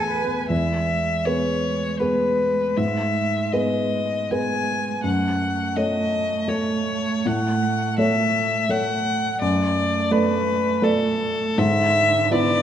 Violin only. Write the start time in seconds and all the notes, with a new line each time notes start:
Already playing: G#5
0.50 E5
1.25 C#5
1.99 B4
2.77 E5
3.52 D#5
4.31 G#5
5.04 F#5
5.77 D#5
6.49 C#5
7.27 F#5
7.99 E5
8.70 F#5
9.42 D5
10.11 B4
10.83 A4
11.58 E5
12.32 D5